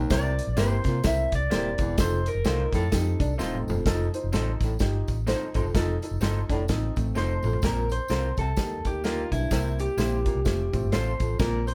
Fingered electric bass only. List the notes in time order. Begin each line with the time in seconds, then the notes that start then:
0.10 C2
0.47 A#1
0.56 G1
0.85 C3
1.04 C2
1.32 C2
1.51 D#1
1.78 E1
1.98 F1
2.35 F1
2.44 C2
2.72 F2
2.92 F2
3.20 C2
3.39 D#1
3.67 E1
3.86 F1
4.24 F1
4.33 A1
4.61 A1
4.81 G1
5.08 A1
5.55 G1
5.64 E1
5.74 F1
6.11 F1
6.20 G1
6.49 F1
6.69 A1
6.97 A1
7.15 F1
7.43 A1
7.63 A#1
8.10 C2
8.38 C2
8.85 D2
9.32 B1
9.51 C2
9.97 A#1
10.35 C2
10.46 F1
10.73 A1
10.83 G1
10.92 A1
11.20 A1
11.40 A#1